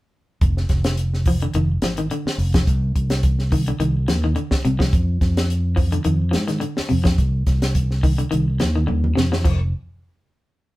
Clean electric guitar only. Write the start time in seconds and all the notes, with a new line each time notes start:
1.28 F3
1.42 D3
1.55 D#3
1.84 F3
1.98 D#3
2.11 D3
2.54 F3
3.52 D#3
3.68 D3
3.80 D#3
4.08 F3
4.24 D#3
4.36 D3
4.65 C3
4.79 F3
5.76 F3
5.92 D3
6.05 D#3
6.31 F3
6.48 D#3
6.60 D3
6.89 C3
7.04 F3
8.03 D#3
8.18 D3
8.31 D#3
8.60 F3
8.76 D#3
8.87 D3
9.15 C3
9.32 F3
9.45 F3